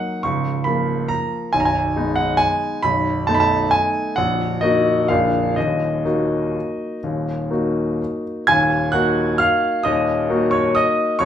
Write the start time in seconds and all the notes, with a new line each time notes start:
Already playing: F#3 A#3 D#4 F#5
0.23 C#1 C#2 C#6
0.64 F3 A#3 F4 B5
1.08 A#5
1.53 B0 B1 G#5
1.60 A#5
1.65 G#5
1.96 G#3 B3 D#4
2.16 F#5
2.37 G#5
2.83 B0 B1 B5
3.27 A3 B3 D#4 A5
3.35 B5
3.40 A5
3.71 G#5
4.16 A#0 A#1 F#5
4.61 A#3 D#4 F#4 D#5
5.08 A#0 A#1 A#3 D4 G#4 F5
5.56 D#1 D#2 D#5
6.05 A#3 D#4 F#4
7.04 D#1 D#2
7.51 A#3 D#4 F#4
8.47 D#1 D#2 G#5 G#6
8.92 A#3 D#4 F#4 F#5 F#6
9.38 F5 F6
9.83 D#1 D#2 D#5 D#6
10.30 A#3 D#4 F#4
10.51 C#5 C#6
10.75 D#5 D#6
11.19 F1 F2 C#5 C#6